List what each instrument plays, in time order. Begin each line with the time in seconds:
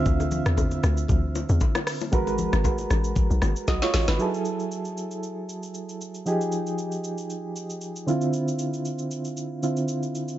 Already playing: synth keys D3 C4 F4 E5 F5
0.06 log drum bass D2, kick, low conga, shaker
0.20 high bongo, shaker
0.31 low conga, shaker
0.46 log drum bass E2, cross-stick, shaker
0.57 kick, high bongo, shaker
0.71 low bongo, shaker
0.83 log drum bass D2, cross-stick, high bongo, shaker
0.97 shaker
1.08 log drum bass D2, kick, low conga, shaker
1.35 low bongo, shaker
1.49 log drum bass E2, shaker
1.61 kick, high bongo, shaker
1.75 cross-stick, low bongo, shaker
1.87 cross-stick, open hi-hat, shaker
2.01 low bongo, shaker
2.12 log drum bass G#1, synth keys G#3 F#4 A#4 B4, kick, low conga, shaker
2.27 high bongo, shaker
2.38 low conga, shaker
2.53 log drum bass G#1, cross-stick, shaker
2.64 kick, high bongo, shaker
2.78 low bongo, shaker
2.90 log drum bass A1, cross-stick, high bongo, shaker
3.04 shaker
3.15 kick, low conga, shaker
3.30 log drum bass B1, shaker
3.42 log drum bass G#1, cross-stick, low bongo, shaker
3.56 shaker
3.68 log drum bass B1, synth keys F#4 D#5, kick, snare, high bongo, shaker
3.82 synth keys F4 C#5, snare, low bongo, shaker
3.94 log drum bass A1, snare, open hi-hat, shaker
4.08 log drum bass G#1, synth keys D#4 B4, snare, low bongo, shaker
4.19 synth keys F#3 E4 G#4 A4, shaker
4.34 shaker
4.45 shaker
4.60 shaker
4.72 shaker
4.85 shaker
4.97 shaker
5.11 shaker
5.23 shaker
5.49 shaker
5.63 shaker
5.74 shaker
5.89 shaker
6.01 shaker
6.14 shaker
6.25 synth keys F3 D#4 G4 G#4, shaker
6.41 shaker
6.52 shaker
6.67 shaker
6.78 shaker
6.92 shaker
7.04 shaker
7.18 shaker
7.30 shaker
7.56 shaker
7.70 shaker
7.81 shaker
7.96 shaker
8.06 synth keys D3 C4 E4 F4, shaker
8.21 shaker
8.33 shaker
8.48 shaker
8.59 shaker
8.73 shaker
8.85 shaker
8.99 shaker
9.11 shaker
9.25 shaker
9.37 shaker
9.62 synth keys D3 C4 E4 F4, shaker
9.77 shaker
9.88 shaker
10.03 shaker
10.15 shaker
10.28 shaker